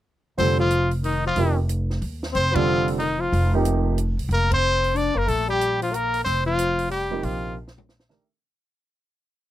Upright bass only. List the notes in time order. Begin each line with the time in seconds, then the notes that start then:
0.38 F1
1.37 F1
2.01 D#2
2.35 F1
3.32 F1
4.17 C2
4.29 F1
5.15 F#1
5.28 A#1
6.26 F1
7.23 A#1